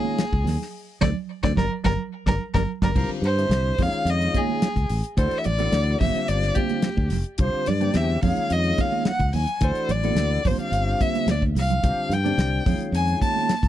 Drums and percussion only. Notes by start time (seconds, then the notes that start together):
0.04 high conga
0.18 snare, closed hi-hat, low conga
0.33 kick
0.46 snare, open hi-hat, low conga
0.62 snare
1.01 kick, snare, low conga
1.43 kick, snare, low conga
1.57 kick, snare, low conga
1.85 kick, snare, low conga
2.26 kick, snare, low conga
2.54 kick, snare, low conga
2.82 kick, snare, low conga
2.96 kick, crash
3.24 closed hi-hat
3.39 closed hi-hat
3.51 snare, closed hi-hat
3.78 kick, open hi-hat, high conga, low conga
3.93 closed hi-hat
4.07 closed hi-hat
4.21 closed hi-hat
4.34 kick, closed hi-hat, high conga
4.49 high conga
4.62 snare, closed hi-hat, low conga
4.76 kick, closed hi-hat
4.89 open hi-hat
5.04 closed hi-hat
5.18 kick, closed hi-hat
5.31 closed hi-hat
5.44 closed hi-hat, low conga
5.59 closed hi-hat, high conga
5.73 snare, closed hi-hat
6.01 kick, open hi-hat, high conga, low conga
6.15 closed hi-hat
6.28 closed hi-hat
6.42 snare
6.55 kick, closed hi-hat, high conga
6.69 closed hi-hat, high conga
6.82 snare, closed hi-hat, low conga
6.98 kick
7.10 snare, open hi-hat, low conga
7.24 closed hi-hat
7.38 kick, closed hi-hat
7.66 snare, closed hi-hat, low conga
7.81 closed hi-hat, high conga
7.94 snare, closed hi-hat
8.22 kick, open hi-hat, high conga, low conga
8.37 closed hi-hat
8.50 closed hi-hat
8.64 closed hi-hat
8.78 kick, closed hi-hat, high conga
8.92 high conga
9.05 snare, closed hi-hat, low conga
9.20 kick, closed hi-hat
9.33 open hi-hat, low conga
9.47 closed hi-hat
9.61 kick, closed hi-hat
9.75 closed hi-hat
9.89 closed hi-hat, low conga
10.04 closed hi-hat, high conga
10.17 snare, closed hi-hat
10.45 kick, open hi-hat, high conga, low conga
10.59 closed hi-hat
10.73 closed hi-hat
11.01 kick, closed hi-hat, high conga
11.15 closed hi-hat, high conga
11.28 snare, closed hi-hat, low conga
11.42 kick, high conga
11.56 open hi-hat, low conga
11.70 closed hi-hat, low conga
11.84 kick, closed hi-hat
12.12 snare, closed hi-hat, low conga
12.26 closed hi-hat, high conga
12.39 snare, closed hi-hat
12.66 kick, open hi-hat, high conga, low conga
12.80 closed hi-hat
12.95 closed hi-hat
13.08 closed hi-hat
13.21 kick, closed hi-hat, high conga
13.36 high conga
13.49 snare, closed hi-hat, low conga
13.63 kick, closed hi-hat